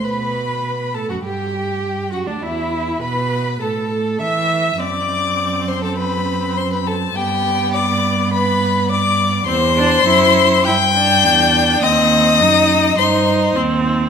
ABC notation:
X:1
M:4/4
L:1/16
Q:1/4=102
K:G
V:1 name="Violin"
b6 a f g6 f d | e4 b4 a4 e'4 | d'6 c' a b4 c' b a2 | g4 d'4 b4 d'4 |
c'8 g'8 | _e'8 c'4 z4 |]
V:2 name="Violin"
B6 A F G6 F D | E4 B4 A4 e4 | d6 c A B4 c B A2 | G4 d4 B4 d4 |
c8 g8 | _e8 c4 z4 |]
V:3 name="Viola"
B6 A F G6 F D | E4 B4 A4 e4 | C16 | B,16 |
C2 D2 E4 E2 D6 | C4 _E4 E4 C4 |]
V:4 name="Cello" clef=bass
B,,6 A,, F,, G,,6 F,, D,, | E,,4 B,,4 A,,4 E,4 | F,,16 | G,,16 |
E,,4 F,,4 G,,4 E,,4 | _E,,4 F,,4 G,,4 E,,4 |]